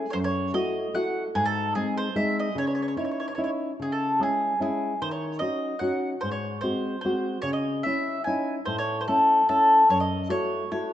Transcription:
Already playing: mandolin G#4
0.10 nylon-string guitar F#2, mandolin C5 C#5
0.24 mandolin C#5
0.53 nylon-string guitar A3 E4 F#4, mandolin D#5
0.94 nylon-string guitar A3 E4 F#4, mandolin F#5
1.35 nylon-string guitar G#2, mandolin G#4
1.46 mandolin A4
1.75 nylon-string guitar G#3 C4 D#4, mandolin G#4
1.97 mandolin C5
2.16 nylon-string guitar G#3 C4 D#4, mandolin E5
2.40 mandolin D#5
2.55 nylon-string guitar C#3, mandolin C#5
2.67 mandolin C#5
2.75 mandolin C#5
2.82 mandolin C#5
2.88 mandolin C#5
2.96 nylon-string guitar C#4 D#4 E4, mandolin C#5
3.04 mandolin C#5
3.11 mandolin C#5
3.20 mandolin C#5
3.28 mandolin C#5
3.35 nylon-string guitar C#4 D#4 E4, mandolin C#5
3.44 mandolin C#5
3.80 nylon-string guitar C#3, mandolin G#4
3.92 mandolin A4
4.19 nylon-string guitar G#3 C#4 E4, mandolin G#4
4.60 nylon-string guitar G#3 C#4 E4, mandolin G#4
5.02 nylon-string guitar D#3, mandolin C5
5.11 mandolin C#5
5.39 nylon-string guitar C#4 D#4 F#4, mandolin D#5
5.79 nylon-string guitar C#4 D#4 F#4, mandolin F#5
6.21 nylon-string guitar G#2, mandolin C5
6.31 mandolin C#5
6.61 nylon-string guitar G#3 C4 F#4, mandolin C5
7.01 nylon-string guitar G#3 C4, mandolin C5
7.06 nylon-string guitar F#4
7.42 nylon-string guitar C#3, mandolin C#5
7.53 mandolin D#5
7.83 nylon-string guitar C#4 E4, mandolin E5
8.24 nylon-string guitar C#4 D#4 E4, mandolin G#5
8.65 nylon-string guitar A2, mandolin C5
8.78 mandolin C#5
9.01 mandolin C5
9.08 nylon-string guitar A3 C#4 E4, mandolin A4
9.49 nylon-string guitar A3 C#4 E4, mandolin A4
9.89 nylon-string guitar F#2, mandolin C#5
10.00 mandolin D#5
10.29 nylon-string guitar A3 E4 F#4, mandolin C#5
10.72 nylon-string guitar A3 E4 F#4, mandolin C#5

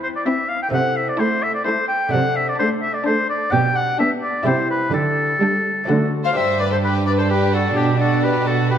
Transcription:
Already playing: viola section C4, lute C4 E4, violin section E4 G5
0.03 oboe C5
0.16 oboe D5
0.26 viola section C4, violin section E4 G5, oboe E5
0.49 oboe F5
0.62 oboe G5
0.69 lute A3 C4 E4
0.73 cello section C3, lute C3, oboe F#5
0.96 oboe E5
1.09 oboe D5
1.19 viola section A3, violin section E4 A5, oboe C5
1.43 oboe E5
1.54 oboe D5
1.64 viola section A3, violin section E4 A5, oboe C5
1.88 oboe G5
2.09 lute A3 D4, oboe F#5
2.13 cello section C3, lute C3
2.36 oboe E5
2.48 oboe D5
2.59 viola section A3, violin section D4 A5, oboe C5
2.82 oboe E5
2.94 oboe D5
3.06 viola section A3, violin section D4 A5, oboe C5
3.29 oboe D5
3.50 lute B2 D4 G4, cello section B2, oboe G5
3.76 oboe F#5
3.99 viola section B3, violin section D4 G5, oboe E5
4.22 oboe D5
4.43 cello section C3, lute C3 E4 G4, viola section G3, violin section E4 G5, oboe C5
4.70 oboe B4
4.91 cello section D3, lute D3 D4 G4, oboe A4
5.41 viola section G3, violin section D4 G5
5.84 lute A3 F#4
5.88 cello section D3, lute D3, viola section A3, violin section D4 F#5
6.24 violin section C5 F5, oboe F5
6.33 cello section G2, lute G2 D4 G4, violin section C5 E5, oboe E5
6.37 viola section D4
6.60 violin section B4 D5, oboe D5
6.71 violin section A4 C5, oboe C5
6.83 violin section G4 B4, oboe B4
7.06 violin section B4 D5, oboe D5
7.18 violin section A4 C5, oboe C5
7.30 violin section G4 B4, oboe B4
7.53 violin section F#4 A4, oboe A4
7.74 lute B2 D4 G4, cello section B2, violin section D4 G4, oboe G4
8.00 violin section F#4 A4, oboe A4
8.23 violin section G4 B4, oboe B4
8.47 violin section F#4 A4, oboe A4
8.70 violin section G4 B4, oboe B4

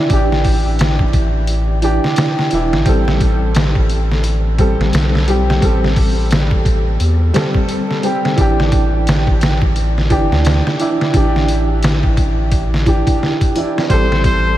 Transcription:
Already playing: upright piano E3 D4 E4 G4
0.09 analog synth bass A1, upright piano E3 D4, kick, closed hi-hat
0.13 upright piano G4
0.32 snare
0.44 kick, open hi-hat
0.79 snare, closed hi-hat
0.99 kick
1.13 kick, closed hi-hat
1.47 closed hi-hat
1.82 upright piano E3 D4 G4, closed hi-hat
2.04 snare
2.16 snare, closed hi-hat
2.39 snare
2.51 analog synth bass E1, upright piano E3 D4 E4, closed hi-hat
2.73 analog synth bass A1, snare
2.85 analog synth bass A1, upright piano G3 C4, kick, closed hi-hat
2.89 upright piano A4
3.08 snare
3.20 kick, closed hi-hat
3.55 snare, closed hi-hat
3.75 kick
3.89 closed hi-hat
4.11 snare
4.24 closed hi-hat
4.58 upright piano G3 C4 A4, kick, closed hi-hat
4.79 analog synth bass A1, snare
4.93 analog synth bass B1, snare, closed hi-hat
5.15 snare
5.27 upright piano G3 C4 G4, closed hi-hat
5.50 snare
5.60 analog synth bass A1, upright piano G3 C4, kick, closed hi-hat
5.65 upright piano A4
5.84 snare
5.96 kick, open hi-hat
6.31 snare, closed hi-hat
6.51 kick
6.65 kick, closed hi-hat
7.00 analog synth bass E2, closed hi-hat
7.33 upright piano G3 C4 A4, snare, closed hi-hat
7.54 kick
7.68 closed hi-hat
7.91 snare
8.03 upright piano G3 C4 G4, closed hi-hat
8.25 snare
8.36 analog synth bass A1, upright piano E3 D4, kick, closed hi-hat
8.41 upright piano G4
8.60 snare
8.72 kick, closed hi-hat
9.07 snare, closed hi-hat
9.27 kick
9.41 snare, closed hi-hat
9.62 kick
9.76 closed hi-hat
9.98 snare
10.10 analog synth bass G1, upright piano E3 D4 G4, kick, closed hi-hat
10.32 analog synth bass D2, snare
10.45 snare, closed hi-hat
10.67 snare
10.79 upright piano E3 D4 E4, closed hi-hat
11.01 snare
11.12 analog synth bass A1, upright piano E3 D4, kick, closed hi-hat
11.16 upright piano G4
11.36 snare
11.48 closed hi-hat
11.83 snare, closed hi-hat
12.03 kick
12.17 kick, closed hi-hat
12.52 kick, closed hi-hat
12.74 snare
12.86 upright piano E3 D4 G4, kick, closed hi-hat
13.07 kick, closed hi-hat
13.23 snare
13.41 kick, closed hi-hat
13.55 upright piano E3 D4 E4, closed hi-hat
13.78 snare
13.89 analog synth bass A1, ambient pad E3 E4, upright piano G3 C4, muted trumpet C5, kick, closed hi-hat
13.93 upright piano A4
14.12 snare
14.24 muted trumpet C5, kick, closed hi-hat

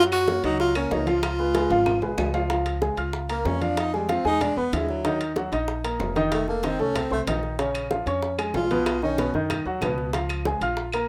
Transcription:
Already playing: upright bass F#2, grand piano F#3 F#4 F#5
0.12 tenor saxophone F#4, high bongo, high conga, high timbale, claves
0.28 grand piano A#3 A#4 C#5, high bongo, high conga, low timbale
0.43 upright bass C#2, grand piano F#3 F#4 F#5, tenor saxophone D#4, high bongo, high conga, high timbale
0.60 tenor saxophone F4, high bongo
0.75 grand piano A#3 A#4 C#5, tenor saxophone C#4, high conga, high timbale, claves
0.91 upright bass C#2, grand piano A#3 A#4 C#5, tenor saxophone D#4, high bongo, low bongo, high conga, low timbale
1.07 grand piano F3 F4 F5, tenor saxophone F4, high bongo, high conga, high timbale
1.23 high bongo, high conga, high timbale, claves
1.39 grand piano G#3 G#4 B4, high bongo, high conga
1.54 grand piano G#3 G#4 B4, high bongo, high conga, high timbale, low timbale
1.70 upright bass G#1, grand piano F3 F4 F5, high bongo, high timbale
1.86 high bongo, high conga, low conga, high timbale, claves
2.02 upright bass B1, grand piano G#3 G#4 B4, high conga, low conga, low timbale
2.18 upright bass C#2, high bongo, low bongo, high conga, low timbale, claves
2.34 grand piano F3 F4 F5, high bongo, low timbale
2.50 grand piano F3 F4 F5, high bongo, high conga, high timbale
2.66 high bongo, high conga, high timbale
2.81 grand piano G#3 G#4 G#5, high bongo, high conga, low timbale
2.97 upright bass C#2, grand piano F4 F5 F6, high bongo, high conga, high timbale
3.13 high bongo, high conga
3.29 grand piano A#3 A#4 A#5, tenor saxophone A#3, high conga, high timbale
3.45 upright bass F2, tenor saxophone C#4, high bongo, low bongo, high conga, low timbale
3.61 grand piano F3 F4 F5, tenor saxophone D4, high bongo, high conga, high timbale
3.77 tenor saxophone D#4, high bongo, high conga, high timbale
3.93 tenor saxophone G3, grand piano G#3 G#4 G#5, high bongo, high conga
4.09 grand piano F3 F4 F5, tenor saxophone C4, high bongo, high conga, high timbale, low timbale
4.25 upright bass E2, grand piano G#3 G#4 G#5, tenor saxophone D#4, high bongo, high conga
4.41 tenor saxophone D4, high bongo, high conga, low conga, high timbale
4.57 upright bass E2, grand piano B3 B4 B5, tenor saxophone B3, high conga
4.72 upright bass D#2, grand piano D3 E4 E5, tenor saxophone G#3, high bongo, low bongo, high conga, high timbale, low timbale
4.88 tenor saxophone F#3, high bongo, high conga
5.04 grand piano D#3 D#4 D#5, high bongo, high conga, high timbale
5.20 high bongo, high timbale
5.36 grand piano F#3 F#4 F#5, high bongo, high conga, low timbale
5.52 upright bass A#1, grand piano D#4 D#5 D#6, high bongo, high timbale
5.68 high bongo, high conga
5.84 grand piano A#3 A#4 A#5, high conga, high timbale
5.99 upright bass F1, high bongo, low bongo, high conga, low timbale
6.16 grand piano D#3 D#4 D#5, high bongo, high conga, high timbale
6.32 tenor saxophone A3, high bongo, high timbale
6.47 grand piano A3 A4 A5, tenor saxophone A#3, high bongo, high conga
6.63 grand piano D#3 D#4 D#5, tenor saxophone C4, high bongo, high conga, high timbale, low timbale
6.79 upright bass C2, grand piano A3 A4 A5, tenor saxophone C#4, high bongo, high conga
6.95 tenor saxophone C4, high bongo, high conga, low conga, high timbale
7.11 upright bass C2, tenor saxophone A3, grand piano C4 C5 C6, high conga
7.27 upright bass A#1, grand piano D#3 D#4 D#5, high bongo, low bongo, high conga, high timbale, low timbale
7.43 high bongo
7.59 grand piano C#3 C#4 C#5, high bongo, high conga, high timbale
7.75 high bongo, high conga, high timbale, claves
7.90 grand piano F3 F4 F5, high bongo, high conga, low timbale
8.06 upright bass F2, grand piano C#4 C#5 C#6, high bongo, high conga, high timbale
8.22 high bongo, high conga
8.38 grand piano G#3 G#4 G#5, high conga, high timbale, claves
8.54 upright bass B1, tenor saxophone F4, high bongo, low bongo, high conga, low timbale
8.70 grand piano B2 B3 B4, high bongo, high conga, high timbale
8.86 high bongo, high conga, high timbale, claves
9.02 grand piano D#3 D#4 D#5, tenor saxophone C#4, high bongo, high conga
9.18 grand piano B2 B3 B4, high bongo, high conga, high timbale, low timbale
9.34 upright bass F#2, grand piano D#3 D#4 D#5, high bongo, high conga
9.50 high bongo, high conga, low conga, high timbale, claves
9.65 upright bass D#2, grand piano F#3 F#4 F#5, high conga
9.81 upright bass C#2, grand piano B2 B3 B4, high bongo, low bongo, high conga, high timbale, low timbale, claves
9.98 high bongo, high conga
10.13 grand piano F3 F4 F5, high bongo, high conga, high timbale
10.29 high bongo, high conga, high timbale, claves
10.45 grand piano G#3 G#4 G#5, high bongo, high conga, low timbale
10.61 upright bass A#1, grand piano F4 F5 F6, high bongo, high conga, high timbale
10.77 high bongo, high conga
10.92 grand piano A#3 A#4 A#5, high conga, high timbale, claves

